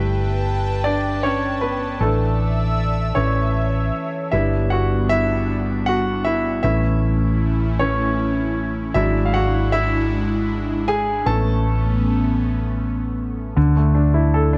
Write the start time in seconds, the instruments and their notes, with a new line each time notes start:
Already playing: fingered electric bass G1, grand piano G3 A3 B3 E4 E5, analog synth pad B4 G5 A5
0.84 grand piano D4 D5
1.23 grand piano C#4 C#5
1.61 grand piano B3 B4
2.01 fingered electric bass A1, grand piano E3 A3 D4 A4, analog synth pad D5 E5 E6
3.15 fingered electric bass A1, grand piano E3 A3 C#4 C#5, analog synth pad C#5 E5
4.32 fingered electric bass G1, analog synth pad G3 B3 D4, grand piano G3 B3 D4 E4 E5
4.70 grand piano F#4 F#5
5.09 grand piano E4 E5
5.86 grand piano F#4 F#5
6.25 grand piano E4 E5
6.63 fingered electric bass A1, grand piano E3 A3 C#4 E4 E5, analog synth pad A3 C#4 E4
7.79 grand piano E3 A3 C#4 C#5
8.94 fingered electric bass G#1, grand piano F#3 G#3 D4 E4 E5, analog synth pad G#3 D4 E4
9.25 grand piano F5
9.34 grand piano F#4 F#5
9.72 grand piano E4 E5
10.88 grand piano G#4 G#5
11.26 fingered electric bass A1, grand piano A3 B3 C#4 A4 A5, analog synth pad A3 B3 C#4
13.56 fingered electric bass D2, grand piano D3
13.76 grand piano A3
13.95 grand piano D4
14.14 grand piano E4
14.34 grand piano A4
14.53 grand piano D4